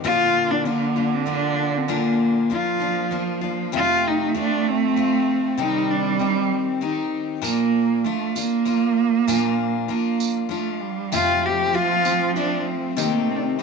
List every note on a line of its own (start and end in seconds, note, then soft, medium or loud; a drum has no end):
0.03 0.65 A#2 medium
0.03 2.51 D3 loud
0.03 0.65 F3 medium
0.03 0.65 A#3 loud
0.03 0.65 D4 medium
0.03 0.52 F4 loud
0.03 0.67 F4 loud
0.51 0.68 D4 loud
0.65 0.96 F3 medium
0.65 0.96 A#3 medium
0.65 1.15 A#3 loud
0.65 0.95 D4 medium
0.65 0.95 F4 medium
0.96 1.25 A#3 soft
0.96 1.26 D4 soft
0.96 1.27 F4 medium
1.14 1.28 C4 medium
1.26 1.88 F3 medium
1.26 1.88 A#3 medium
1.26 1.88 D4 medium
1.26 1.89 F4 medium
1.30 1.79 D4 loud
1.77 1.90 C4 medium
1.88 2.50 A#2 medium
1.88 2.49 F3 medium
1.88 2.50 A#3 medium
1.88 2.50 D4 medium
1.88 2.52 F4 loud
1.92 2.56 A#3 loud
2.49 3.75 F3 loud
2.49 2.81 F3 medium
2.49 2.81 A#3 medium
2.49 2.80 D4 medium
2.49 2.79 F4 medium
2.54 3.45 F4 medium
2.80 3.11 A#3 soft
2.80 3.11 D4 medium
2.80 3.11 F4 medium
3.11 3.42 F3 medium
3.11 3.43 A#3 medium
3.11 3.42 D4 medium
3.11 3.40 F4 medium
3.41 3.73 A#3 soft
3.41 3.73 D4 medium
3.41 3.73 F4 medium
3.72 4.34 F2 medium
3.72 4.35 C3 medium
3.72 4.33 F3 medium
3.72 5.61 A3 loud
3.72 4.34 A3 medium
3.72 4.35 C4 loud
3.72 4.35 F4 medium
3.76 4.09 F4 loud
4.08 4.37 D#4 loud
4.35 4.95 F3 medium
4.35 4.96 A3 medium
4.35 4.96 C4 medium
4.35 4.97 F4 medium
4.39 4.70 D4 loud
4.69 5.62 C4 loud
4.96 5.58 F3 medium
4.96 5.58 A3 medium
4.96 5.57 C4 medium
4.96 5.59 F4 medium
5.58 6.19 C3 medium
5.58 6.18 D#3 medium
5.58 7.13 G3 loud
5.58 6.19 C4 medium
5.58 5.92 D#4 loud
5.58 6.20 G4 medium
5.90 6.21 D4 medium
6.19 6.80 D#3 medium
6.19 6.28 C4 medium
6.19 6.80 C4 medium
6.19 6.81 D#4 medium
6.19 6.82 G4 medium
6.27 6.36 D4 medium
6.34 6.84 C4 medium
6.81 7.42 D#3 medium
6.81 7.42 C4 medium
6.81 7.43 D#4 medium
6.81 7.28 D#4 loud
6.81 7.43 G4 medium
7.42 8.04 A#2 loud
7.42 8.04 F3 loud
7.42 8.04 A#3 medium
7.42 8.06 A#3 loud
7.42 8.05 D4 medium
7.42 8.06 F4 loud
7.42 tambourine medium
8.04 8.35 F3 medium
8.04 8.39 A3 loud
8.04 8.35 D4 medium
8.04 8.34 F4 medium
8.35 9.89 A#3 loud
8.35 8.65 A#3 medium
8.35 8.65 D4 medium
8.35 8.66 F4 medium
8.35 tambourine medium
8.65 9.28 F3 medium
8.65 9.28 A#3 medium
8.65 9.28 D4 medium
8.65 9.29 F4 medium
8.65 tambourine soft
9.28 9.89 A#2 loud
9.28 9.88 F3 medium
9.28 9.88 A#3 loud
9.28 9.89 D4 loud
9.28 9.90 F4 loud
9.28 tambourine medium
9.88 10.48 F3 medium
9.88 10.51 A#3 medium
9.88 10.47 A#3 loud
9.88 10.49 D4 medium
9.88 10.50 F4 medium
10.20 tambourine medium
10.49 11.11 F3 medium
10.49 10.83 A3 loud
10.49 11.12 D4 medium
10.49 11.12 F4 medium
10.49 tambourine soft
10.82 11.15 G3 loud
11.12 11.73 F2 medium
11.12 11.74 C3 medium
11.12 11.72 F3 medium
11.12 12.97 F3 loud
11.12 11.73 A3 medium
11.12 11.74 C4 loud
11.12 11.74 F4 medium
11.12 11.47 F4 loud
11.12 tambourine medium
11.46 11.76 G4 loud
11.73 12.04 F3 medium
11.73 12.05 A3 medium
11.73 12.03 C4 medium
11.73 12.36 F4 loud
11.73 12.03 F4 medium
12.04 12.34 F3 soft
12.04 12.35 A3 soft
12.04 12.35 C4 medium
12.04 12.35 F4 medium
12.04 tambourine medium
12.36 12.96 F3 medium
12.36 12.97 A3 medium
12.36 12.96 C4 medium
12.36 12.60 D4 loud
12.36 12.98 F4 medium
12.36 tambourine soft
12.60 12.69 D4 medium
12.67 13.00 C4 medium
12.96 13.58 C3 medium
12.96 13.57 D#3 medium
12.96 13.61 A3 loud
12.96 13.31 A#3 loud
12.96 13.58 C4 medium
12.96 13.59 D#4 medium
12.96 13.59 G4 medium
12.96 tambourine loud
13.30 13.37 C4 medium
13.36 13.45 D4 medium
13.43 13.59 C4 medium
13.59 13.63 D#3 medium
13.59 13.63 G3 medium
13.59 13.63 C4 medium
13.59 13.63 D#4 medium